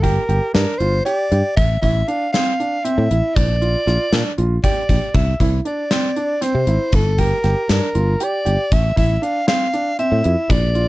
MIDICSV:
0, 0, Header, 1, 5, 480
1, 0, Start_track
1, 0, Tempo, 510204
1, 1480, Time_signature, 7, 3, 24, 8
1, 10238, End_track
2, 0, Start_track
2, 0, Title_t, "Soprano saxophone"
2, 0, Program_c, 0, 64
2, 24, Note_on_c, 0, 70, 83
2, 504, Note_off_c, 0, 70, 0
2, 510, Note_on_c, 0, 70, 82
2, 735, Note_on_c, 0, 72, 89
2, 749, Note_off_c, 0, 70, 0
2, 982, Note_off_c, 0, 72, 0
2, 988, Note_on_c, 0, 74, 94
2, 1440, Note_off_c, 0, 74, 0
2, 1470, Note_on_c, 0, 76, 97
2, 1698, Note_off_c, 0, 76, 0
2, 1708, Note_on_c, 0, 76, 97
2, 1956, Note_on_c, 0, 77, 98
2, 1970, Note_off_c, 0, 76, 0
2, 2182, Note_off_c, 0, 77, 0
2, 2188, Note_on_c, 0, 77, 86
2, 2675, Note_on_c, 0, 76, 96
2, 2689, Note_off_c, 0, 77, 0
2, 3155, Note_on_c, 0, 74, 97
2, 3169, Note_off_c, 0, 76, 0
2, 4199, Note_off_c, 0, 74, 0
2, 4359, Note_on_c, 0, 74, 81
2, 4847, Note_on_c, 0, 76, 76
2, 4861, Note_off_c, 0, 74, 0
2, 5084, Note_off_c, 0, 76, 0
2, 5334, Note_on_c, 0, 74, 73
2, 6048, Note_on_c, 0, 72, 82
2, 6062, Note_off_c, 0, 74, 0
2, 6540, Note_on_c, 0, 69, 91
2, 6554, Note_off_c, 0, 72, 0
2, 6774, Note_on_c, 0, 70, 88
2, 6788, Note_off_c, 0, 69, 0
2, 7247, Note_off_c, 0, 70, 0
2, 7259, Note_on_c, 0, 70, 79
2, 7746, Note_on_c, 0, 74, 91
2, 7760, Note_off_c, 0, 70, 0
2, 8212, Note_on_c, 0, 76, 109
2, 8226, Note_off_c, 0, 74, 0
2, 8445, Note_off_c, 0, 76, 0
2, 8450, Note_on_c, 0, 76, 84
2, 8681, Note_on_c, 0, 77, 89
2, 8696, Note_off_c, 0, 76, 0
2, 8913, Note_off_c, 0, 77, 0
2, 8919, Note_on_c, 0, 77, 97
2, 9365, Note_off_c, 0, 77, 0
2, 9402, Note_on_c, 0, 76, 85
2, 9891, Note_on_c, 0, 74, 97
2, 9905, Note_off_c, 0, 76, 0
2, 10238, Note_off_c, 0, 74, 0
2, 10238, End_track
3, 0, Start_track
3, 0, Title_t, "Grand piano"
3, 0, Program_c, 1, 0
3, 28, Note_on_c, 1, 67, 75
3, 188, Note_off_c, 1, 67, 0
3, 272, Note_on_c, 1, 67, 69
3, 430, Note_off_c, 1, 67, 0
3, 507, Note_on_c, 1, 62, 76
3, 667, Note_off_c, 1, 62, 0
3, 755, Note_on_c, 1, 65, 77
3, 912, Note_off_c, 1, 65, 0
3, 994, Note_on_c, 1, 67, 79
3, 1152, Note_off_c, 1, 67, 0
3, 1236, Note_on_c, 1, 67, 65
3, 1393, Note_off_c, 1, 67, 0
3, 1714, Note_on_c, 1, 64, 72
3, 1872, Note_off_c, 1, 64, 0
3, 1956, Note_on_c, 1, 62, 74
3, 2112, Note_off_c, 1, 62, 0
3, 2203, Note_on_c, 1, 60, 75
3, 2358, Note_off_c, 1, 60, 0
3, 2444, Note_on_c, 1, 62, 67
3, 2598, Note_off_c, 1, 62, 0
3, 2676, Note_on_c, 1, 60, 74
3, 2833, Note_off_c, 1, 60, 0
3, 2923, Note_on_c, 1, 64, 64
3, 3233, Note_off_c, 1, 64, 0
3, 3400, Note_on_c, 1, 65, 66
3, 3556, Note_off_c, 1, 65, 0
3, 3640, Note_on_c, 1, 65, 75
3, 3795, Note_off_c, 1, 65, 0
3, 3882, Note_on_c, 1, 62, 72
3, 4037, Note_off_c, 1, 62, 0
3, 4118, Note_on_c, 1, 65, 69
3, 4274, Note_off_c, 1, 65, 0
3, 4363, Note_on_c, 1, 67, 76
3, 4518, Note_off_c, 1, 67, 0
3, 4604, Note_on_c, 1, 67, 55
3, 4758, Note_off_c, 1, 67, 0
3, 5086, Note_on_c, 1, 64, 72
3, 5239, Note_off_c, 1, 64, 0
3, 5317, Note_on_c, 1, 62, 67
3, 5473, Note_off_c, 1, 62, 0
3, 5560, Note_on_c, 1, 60, 78
3, 5715, Note_off_c, 1, 60, 0
3, 5798, Note_on_c, 1, 62, 76
3, 5954, Note_off_c, 1, 62, 0
3, 6033, Note_on_c, 1, 60, 76
3, 6191, Note_off_c, 1, 60, 0
3, 6278, Note_on_c, 1, 64, 60
3, 6590, Note_off_c, 1, 64, 0
3, 6758, Note_on_c, 1, 67, 69
3, 6914, Note_off_c, 1, 67, 0
3, 6997, Note_on_c, 1, 67, 70
3, 7154, Note_off_c, 1, 67, 0
3, 7239, Note_on_c, 1, 62, 72
3, 7394, Note_off_c, 1, 62, 0
3, 7477, Note_on_c, 1, 65, 70
3, 7633, Note_off_c, 1, 65, 0
3, 7719, Note_on_c, 1, 67, 71
3, 7875, Note_off_c, 1, 67, 0
3, 7952, Note_on_c, 1, 67, 66
3, 8110, Note_off_c, 1, 67, 0
3, 8431, Note_on_c, 1, 64, 80
3, 8589, Note_off_c, 1, 64, 0
3, 8674, Note_on_c, 1, 62, 73
3, 8831, Note_off_c, 1, 62, 0
3, 8913, Note_on_c, 1, 60, 75
3, 9070, Note_off_c, 1, 60, 0
3, 9158, Note_on_c, 1, 62, 79
3, 9314, Note_off_c, 1, 62, 0
3, 9397, Note_on_c, 1, 60, 73
3, 9553, Note_off_c, 1, 60, 0
3, 9632, Note_on_c, 1, 64, 64
3, 9945, Note_off_c, 1, 64, 0
3, 10114, Note_on_c, 1, 65, 66
3, 10238, Note_off_c, 1, 65, 0
3, 10238, End_track
4, 0, Start_track
4, 0, Title_t, "Fretless electric bass"
4, 0, Program_c, 2, 35
4, 0, Note_on_c, 2, 31, 93
4, 155, Note_off_c, 2, 31, 0
4, 271, Note_on_c, 2, 31, 83
4, 365, Note_off_c, 2, 31, 0
4, 517, Note_on_c, 2, 43, 84
4, 609, Note_off_c, 2, 43, 0
4, 756, Note_on_c, 2, 31, 66
4, 938, Note_off_c, 2, 31, 0
4, 1238, Note_on_c, 2, 43, 76
4, 1329, Note_off_c, 2, 43, 0
4, 1478, Note_on_c, 2, 33, 79
4, 1659, Note_off_c, 2, 33, 0
4, 1715, Note_on_c, 2, 33, 68
4, 1898, Note_off_c, 2, 33, 0
4, 2802, Note_on_c, 2, 45, 80
4, 2891, Note_off_c, 2, 45, 0
4, 2925, Note_on_c, 2, 33, 74
4, 3013, Note_off_c, 2, 33, 0
4, 3165, Note_on_c, 2, 34, 79
4, 3525, Note_off_c, 2, 34, 0
4, 3644, Note_on_c, 2, 34, 88
4, 3733, Note_off_c, 2, 34, 0
4, 3881, Note_on_c, 2, 46, 79
4, 3971, Note_off_c, 2, 46, 0
4, 4124, Note_on_c, 2, 34, 69
4, 4304, Note_off_c, 2, 34, 0
4, 4603, Note_on_c, 2, 34, 62
4, 4692, Note_off_c, 2, 34, 0
4, 4839, Note_on_c, 2, 36, 84
4, 5020, Note_off_c, 2, 36, 0
4, 5082, Note_on_c, 2, 36, 66
4, 5262, Note_off_c, 2, 36, 0
4, 6160, Note_on_c, 2, 48, 76
4, 6250, Note_off_c, 2, 48, 0
4, 6276, Note_on_c, 2, 32, 80
4, 6368, Note_off_c, 2, 32, 0
4, 6517, Note_on_c, 2, 31, 90
4, 6880, Note_off_c, 2, 31, 0
4, 7001, Note_on_c, 2, 31, 82
4, 7091, Note_off_c, 2, 31, 0
4, 7241, Note_on_c, 2, 43, 81
4, 7331, Note_off_c, 2, 43, 0
4, 7482, Note_on_c, 2, 31, 72
4, 7662, Note_off_c, 2, 31, 0
4, 7965, Note_on_c, 2, 31, 67
4, 8053, Note_off_c, 2, 31, 0
4, 8202, Note_on_c, 2, 33, 79
4, 8381, Note_off_c, 2, 33, 0
4, 8441, Note_on_c, 2, 33, 65
4, 8621, Note_off_c, 2, 33, 0
4, 9519, Note_on_c, 2, 45, 77
4, 9609, Note_off_c, 2, 45, 0
4, 9647, Note_on_c, 2, 41, 74
4, 9734, Note_off_c, 2, 41, 0
4, 9875, Note_on_c, 2, 34, 85
4, 10237, Note_off_c, 2, 34, 0
4, 10238, End_track
5, 0, Start_track
5, 0, Title_t, "Drums"
5, 34, Note_on_c, 9, 42, 58
5, 35, Note_on_c, 9, 36, 66
5, 129, Note_off_c, 9, 36, 0
5, 129, Note_off_c, 9, 42, 0
5, 277, Note_on_c, 9, 42, 59
5, 371, Note_off_c, 9, 42, 0
5, 513, Note_on_c, 9, 38, 102
5, 513, Note_on_c, 9, 42, 73
5, 607, Note_off_c, 9, 38, 0
5, 607, Note_off_c, 9, 42, 0
5, 756, Note_on_c, 9, 42, 47
5, 850, Note_off_c, 9, 42, 0
5, 1000, Note_on_c, 9, 42, 72
5, 1094, Note_off_c, 9, 42, 0
5, 1238, Note_on_c, 9, 42, 50
5, 1332, Note_off_c, 9, 42, 0
5, 1478, Note_on_c, 9, 42, 63
5, 1480, Note_on_c, 9, 36, 98
5, 1572, Note_off_c, 9, 42, 0
5, 1574, Note_off_c, 9, 36, 0
5, 1720, Note_on_c, 9, 42, 58
5, 1721, Note_on_c, 9, 36, 62
5, 1814, Note_off_c, 9, 42, 0
5, 1815, Note_off_c, 9, 36, 0
5, 1960, Note_on_c, 9, 42, 52
5, 2054, Note_off_c, 9, 42, 0
5, 2202, Note_on_c, 9, 38, 89
5, 2202, Note_on_c, 9, 42, 68
5, 2296, Note_off_c, 9, 38, 0
5, 2296, Note_off_c, 9, 42, 0
5, 2446, Note_on_c, 9, 42, 50
5, 2540, Note_off_c, 9, 42, 0
5, 2682, Note_on_c, 9, 42, 72
5, 2776, Note_off_c, 9, 42, 0
5, 2924, Note_on_c, 9, 42, 61
5, 3018, Note_off_c, 9, 42, 0
5, 3165, Note_on_c, 9, 36, 100
5, 3165, Note_on_c, 9, 42, 75
5, 3259, Note_off_c, 9, 36, 0
5, 3259, Note_off_c, 9, 42, 0
5, 3405, Note_on_c, 9, 42, 55
5, 3499, Note_off_c, 9, 42, 0
5, 3649, Note_on_c, 9, 38, 31
5, 3649, Note_on_c, 9, 42, 60
5, 3743, Note_off_c, 9, 38, 0
5, 3743, Note_off_c, 9, 42, 0
5, 3882, Note_on_c, 9, 38, 99
5, 3882, Note_on_c, 9, 42, 75
5, 3976, Note_off_c, 9, 38, 0
5, 3976, Note_off_c, 9, 42, 0
5, 4122, Note_on_c, 9, 42, 49
5, 4216, Note_off_c, 9, 42, 0
5, 4362, Note_on_c, 9, 36, 82
5, 4363, Note_on_c, 9, 42, 68
5, 4456, Note_off_c, 9, 36, 0
5, 4457, Note_off_c, 9, 42, 0
5, 4602, Note_on_c, 9, 36, 69
5, 4602, Note_on_c, 9, 42, 55
5, 4696, Note_off_c, 9, 36, 0
5, 4696, Note_off_c, 9, 42, 0
5, 4839, Note_on_c, 9, 42, 70
5, 4841, Note_on_c, 9, 36, 90
5, 4933, Note_off_c, 9, 42, 0
5, 4935, Note_off_c, 9, 36, 0
5, 5081, Note_on_c, 9, 36, 69
5, 5084, Note_on_c, 9, 42, 55
5, 5175, Note_off_c, 9, 36, 0
5, 5178, Note_off_c, 9, 42, 0
5, 5319, Note_on_c, 9, 42, 54
5, 5414, Note_off_c, 9, 42, 0
5, 5558, Note_on_c, 9, 38, 96
5, 5558, Note_on_c, 9, 42, 74
5, 5652, Note_off_c, 9, 38, 0
5, 5652, Note_off_c, 9, 42, 0
5, 5799, Note_on_c, 9, 42, 50
5, 5893, Note_off_c, 9, 42, 0
5, 6038, Note_on_c, 9, 38, 33
5, 6038, Note_on_c, 9, 42, 76
5, 6132, Note_off_c, 9, 38, 0
5, 6132, Note_off_c, 9, 42, 0
5, 6275, Note_on_c, 9, 42, 54
5, 6369, Note_off_c, 9, 42, 0
5, 6513, Note_on_c, 9, 42, 65
5, 6519, Note_on_c, 9, 36, 85
5, 6607, Note_off_c, 9, 42, 0
5, 6613, Note_off_c, 9, 36, 0
5, 6756, Note_on_c, 9, 42, 55
5, 6760, Note_on_c, 9, 36, 60
5, 6851, Note_off_c, 9, 42, 0
5, 6854, Note_off_c, 9, 36, 0
5, 6997, Note_on_c, 9, 38, 29
5, 6997, Note_on_c, 9, 42, 62
5, 7091, Note_off_c, 9, 38, 0
5, 7091, Note_off_c, 9, 42, 0
5, 7238, Note_on_c, 9, 38, 102
5, 7238, Note_on_c, 9, 42, 81
5, 7333, Note_off_c, 9, 38, 0
5, 7333, Note_off_c, 9, 42, 0
5, 7479, Note_on_c, 9, 42, 54
5, 7573, Note_off_c, 9, 42, 0
5, 7717, Note_on_c, 9, 42, 77
5, 7811, Note_off_c, 9, 42, 0
5, 7960, Note_on_c, 9, 42, 60
5, 8055, Note_off_c, 9, 42, 0
5, 8201, Note_on_c, 9, 42, 78
5, 8202, Note_on_c, 9, 36, 89
5, 8295, Note_off_c, 9, 42, 0
5, 8296, Note_off_c, 9, 36, 0
5, 8441, Note_on_c, 9, 42, 60
5, 8442, Note_on_c, 9, 36, 60
5, 8536, Note_off_c, 9, 36, 0
5, 8536, Note_off_c, 9, 42, 0
5, 8683, Note_on_c, 9, 42, 58
5, 8777, Note_off_c, 9, 42, 0
5, 8918, Note_on_c, 9, 38, 111
5, 8918, Note_on_c, 9, 42, 76
5, 9012, Note_off_c, 9, 38, 0
5, 9012, Note_off_c, 9, 42, 0
5, 9158, Note_on_c, 9, 42, 50
5, 9252, Note_off_c, 9, 42, 0
5, 9397, Note_on_c, 9, 42, 66
5, 9491, Note_off_c, 9, 42, 0
5, 9634, Note_on_c, 9, 42, 55
5, 9728, Note_off_c, 9, 42, 0
5, 9877, Note_on_c, 9, 42, 65
5, 9878, Note_on_c, 9, 36, 97
5, 9971, Note_off_c, 9, 42, 0
5, 9972, Note_off_c, 9, 36, 0
5, 10115, Note_on_c, 9, 42, 49
5, 10209, Note_off_c, 9, 42, 0
5, 10238, End_track
0, 0, End_of_file